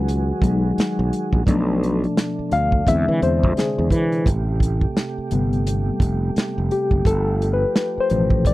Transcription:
Already playing: C#2 D#3 F#3 G#3 D#4 F#4 G#4 B4
0.08 closed hi-hat
0.42 B1 F#3 G#3 D#4, kick, closed hi-hat
0.78 muted fretless electric bass stroke, snare, closed hi-hat
0.99 B1
1.13 closed hi-hat
1.33 A#1, kick
1.46 B1 B2 F3 A3 D4, kick, closed hi-hat
1.83 closed hi-hat
2.04 closed hi-hat
2.17 snare, closed hi-hat
2.39 muted fretless electric bass stroke
2.51 D2 F5, closed hi-hat
2.72 kick
2.86 E2 C3 D3 G#3 C4 E5, kick, closed hi-hat
3.08 E3
3.22 E2 C5, closed hi-hat
3.43 F2, kick
3.57 G#4, muted fretless electric bass stroke, snare, closed hi-hat
3.78 E2
3.90 E3, kick, closed hi-hat
4.12 closed hi-hat
4.26 A1 C3 A3 G4, kick, closed hi-hat
4.60 kick, closed hi-hat
4.81 kick
4.97 snare, closed hi-hat
5.18 muted fretless electric bass stroke
5.31 G1 C3 G3 B3, closed hi-hat
5.53 closed hi-hat
5.67 closed hi-hat
6.00 F1, kick, closed hi-hat
6.36 muted fretless electric bass stroke, snare, closed hi-hat
6.58 F1
6.71 G4, closed hi-hat
6.91 F#1, kick
7.05 G1 F3 A4, kick, closed hi-hat
7.42 closed hi-hat
7.53 B4
7.76 snare, closed hi-hat
7.98 C5, muted fretless electric bass stroke
8.10 A1 B2 F3 A3, closed hi-hat
8.30 kick
8.45 D5, kick, closed hi-hat

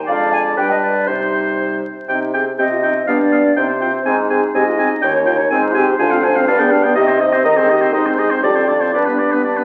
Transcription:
0.07 F2 G#3 D4 D5 F5
0.32 G#5
0.57 G2 G3 D4 B4 G5
0.70 D#5
0.81 D5
1.07 C3 G3 D#4 C5
2.08 C3 C4 D#4 G5
2.34 C4 G#4 G5
2.58 C3 C4 G4 D#5 G5
2.72 F4
2.83 C4 D#4 G5
3.07 G2 B3 D4 D5 F5
3.32 B3 F5
3.56 C3 C4 D#4 C5 G5
3.81 C4 F4 G5
4.04 G#2 C4 D#4 C5 G#5
4.30 C4 G#4 G#5
4.54 G#2 C4 G4 D#5 G#5
4.67 F4
4.78 C4 D#4 G#5
5.02 D#2 C#4 D#4 C#5 G5
5.26 D#4 F4 G5
5.50 G#2 C4 D#4 C5 G#5
5.74 C4 G4 G#5
5.99 D2 D4 F4 G#5
6.11 C4 F5
6.23 D4 C5 G#5
6.35 C4 F5
6.47 G2 D4 B4 D5 F5
6.59 B3 G#4 G5
6.71 D4 G4 F5
6.83 B3 G5
6.95 C3 D#4 G4 D#5
7.07 C4 C5
7.20 D#4 C5 D#5
7.32 C4 C5
7.44 D#3 D#4 A#4 D#5
7.57 C4 G#4 C5
7.68 D#4 G4 D#5
7.81 C4 C5
7.93 G#2 D#4 C5 D#5
8.05 C4 C5
8.18 D#4 G#4 D#5
8.30 C4 C5
8.43 F2 D4 G4 D5
8.55 C4 C5
8.68 D4 F4 D5
8.81 C4 C5
8.93 G2 D4 B4 D5
9.05 B3 B4
9.18 D4 D5
9.32 B3 B4
9.44 D4 D5
9.56 B3 B4

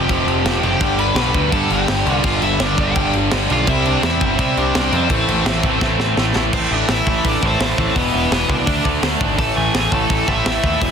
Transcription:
Already playing: G4 G5
0.08 F1 F2 C3 F3, kick, crash
0.26 F1, crash
0.44 F1 F2 C3 F3, snare, crash
0.62 F#1 F2 C3 F3 G4 G5, crash
0.80 G1 G2 D3 G3, kick, crash
0.99 B4 B5, crash
1.15 B1 G2 D3 G3, snare, crash
1.33 D2 G2 D3 G3, kick, crash
1.51 G2 D3 G3 A4 A5, kick, crash
1.70 G1 G4 G5, crash
1.88 G1 G2 D3 G3, snare, crash
2.06 C2 G2 D3 G3, crash
2.16 F5
2.23 G1 G2 D3 G3 F4 F5, kick, crash
2.42 G1 E4 E5, crash
2.59 G1 G2 D3 G3 D4 D5, snare, crash
2.76 G1 G2 D3 G3, kick, crash
2.81 G4 G5
2.95 G1 G2 D3 G3, kick, crash
3.13 G1, crash
3.31 G1 G2 D3 G3, snare, crash
3.49 B1 G2 D3 G3 F4 F5, crash
3.67 C2 C3 G3 C4 E4 E5, kick, crash
3.85 D4 D5, crash
4.03 E2 C3 G3 C4 E4 E5, snare, crash
4.21 G1 C3 G3 C4, kick, crash
4.39 C3 G3 C4 E4 E5, kick, crash
4.57 C2 D4 D5, crash
4.74 C2 C3 G3 C4, snare, crash
4.91 F2 C3 G3 C4 C5, crash
5.09 A1 A2 E3 A3, kick, crash
5.27 A1, crash
5.45 A1 A2 E3 A3, snare, crash
5.63 A1 A2 E3 A3, kick, crash
5.81 A1 A2 E3 A3, kick, snare
5.98 A1, snare
6.17 A1 A2 E3 A3, snare
6.35 A1 A2 E3 A3, snare
6.53 A1 A2 E3 A3 C4 C5, kick, crash
6.71 A1 A2 E3 A3 D4 D5
6.88 A1 A2 E3 A3 E4 E5, snare, open hi-hat
7.07 A1 A2 E3 A3, kick
7.24 A1 A2 E3 A3 D4 D5, kick, open hi-hat
7.42 A1 A2 E3 A3, kick
7.46 C4 C5
7.60 A1 A2 E3 A3, snare, open hi-hat
7.78 A1 A2 E3 A3, kick
7.95 E1 E2 B2 E3 B3 B4, kick, open hi-hat
8.13 E1 E2 B2 E3
8.31 E1 E2 B2 E3 B3 B4, snare, open hi-hat
8.49 C2 E2 B2 E3 D4 D5, kick
8.66 D2 D3 A3 D4, kick, open hi-hat
8.84 D2 D3 A3 D4, kick
9.01 D2 D3 A3 D4, snare, open hi-hat
9.21 G#1 D3 A3 D4, kick
9.38 A1 A2 E3 A3 A4 A5, kick, open hi-hat
9.56 A1 A2 E3 A3 G#4 G#5
9.74 A1 A2 E3 A3, snare, open hi-hat
9.92 A1 A2 E3 A3 A4 A5, kick
10.10 A1 A2 E3 A3, kick, open hi-hat
10.28 A1 A2 E3 A3 E4 E5, kick
10.46 A1 A2 E3 A3, snare, open hi-hat
10.63 D#2 A2 E3 A3 E4 E5, kick
10.81 E1 E2 B2 E3, kick, open hi-hat

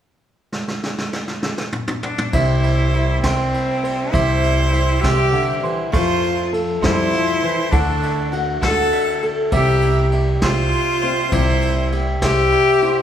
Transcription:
0.52 snare
0.68 snare
0.83 snare
0.98 snare
1.13 snare
1.28 snare
1.43 snare
1.58 snare
1.72 mid tom
1.88 mid tom
2.03 D4, mid tom
2.18 mid tom
2.32 C2 C3 G3 E4 C5 E5, kick, ride
2.64 E4, ride
2.94 G3 E5, ride
3.21 C2 C4 G4 C5, kick, snare, ride
3.54 E4, ride
3.83 C5, ride
4.11 C2 C3 G3 E4 C5 E5, kick, ride
4.44 E4, ride
4.73 G3 E5, ride
5.01 C2 C3 G4 C5 E5, kick, snare, ride
5.32 D3 E4, ride
5.63 E3 C5, ride
5.92 F2 F3 A3 F4 C5 F5, kick, ride
6.24 ride
6.53 A4, ride
6.81 F2 G3 E4 C5, kick, snare, ride
7.13 F3, ride
7.43 E3 C5, ride
7.71 D2 D3 A3 D4 A4 F#5, kick, ride
8.02 E4, ride
8.32 F#4 F#5, ride
8.61 D2 A4 F#5, kick, snare, ride
8.92 E4, ride
9.22 A4, ride
9.52 C2 C3 G3 G4 E5, kick, ride
9.82 ride
10.12 G4 E5, ride
10.42 C2 F4 C5, kick, snare, ride
10.72 ride
11.02 C4 C5, ride
11.32 C2 C3 G3 E4 C5 E5, kick, ride
11.62 E4, ride
11.92 G4 E5, ride
12.22 C2 G4 C5 E5, kick, snare, ride
12.52 E4, ride
12.81 E4 C5, ride

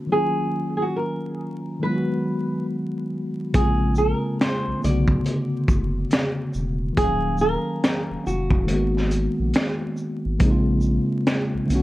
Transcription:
Already playing: C#4 F#4
0.07 D#3 F#3
0.12 A#3 C#4 G#4
0.17 F4
0.77 G#4
0.82 F#4
0.96 A#4
1.79 D#3 G#3 B4
1.84 F#3 B3
1.90 F4
1.96 F#4
3.53 A#1 C3 G#3 A#3 C4 G#4, kick, closed hi-hat
3.58 C#3 F4
3.95 A#4, shaker
4.41 C5, finger snap, snare, closed hi-hat
4.67 B1
4.79 D3 A3
4.84 B1 C#3 B3 D5, closed hi-hat, shaker
4.89 F#4
5.08 kick
5.26 closed hi-hat
5.68 F#1, kick, shaker
6.11 finger snap, snare, closed hi-hat
6.54 E1, shaker
6.93 D#3 F3
6.97 D#1 A#3 C#4 G#4, kick, closed hi-hat
7.02 F#3 F5
7.38 A#4, shaker
7.84 finger snap, snare, closed hi-hat
8.10 F1
8.27 F1 F#4, shaker
8.51 kick
8.64 D#3 G#3, closed hi-hat
8.69 G#1 A#3 B3
8.74 F#4
8.97 snare
9.11 closed hi-hat, shaker
9.39 A#1
9.54 finger snap, snare, closed hi-hat
9.97 shaker
10.26 G#1
10.39 A#1 C#3 G#3 A#3 C4, kick, closed hi-hat
10.44 D#4
10.51 F4
10.81 shaker
11.27 finger snap, snare, closed hi-hat
11.54 B1
11.65 D3 A3
11.70 B1 B3 C#4, closed hi-hat, shaker
11.75 F#4

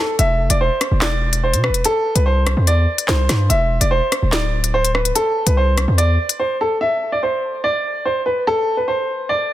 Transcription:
0.00 A4
0.19 E1 E5, closed hi-hat
0.40 F1
0.50 E1 D5, closed hi-hat
0.61 C5
0.81 cross-stick, closed hi-hat
0.91 E1
1.01 D5, snare, clap, closed hi-hat
1.33 closed hi-hat
1.44 C5
1.53 B2, closed hi-hat
1.64 B4, cross-stick
1.69 E1
1.74 closed hi-hat
1.84 A4, closed hi-hat
2.15 C2 B4, closed hi-hat
2.26 C5
2.47 cross-stick, closed hi-hat
2.57 E2
2.67 D5, closed hi-hat
2.98 closed hi-hat
3.08 C2 C5, snare, clap, closed hi-hat
3.29 G2, cross-stick, snare, closed hi-hat
3.50 E1 E5, closed hi-hat
3.81 E1 D5, closed hi-hat
3.91 C5
4.12 cross-stick, closed hi-hat
4.22 D1
4.32 D5, snare, clap, closed hi-hat
4.64 closed hi-hat
4.74 C5
4.85 closed hi-hat
4.95 B4, cross-stick
5.05 closed hi-hat
5.15 A4, closed hi-hat
5.47 C2 B4, closed hi-hat
5.57 C5
5.78 cross-stick, closed hi-hat
5.88 E2
5.98 D5, closed hi-hat
6.29 closed hi-hat
6.39 C5
6.61 A4
6.81 E5
7.12 D5
7.23 C5
7.64 D5
8.05 C5
8.26 B4
8.47 A4
8.77 B4
8.88 C5
9.29 D5

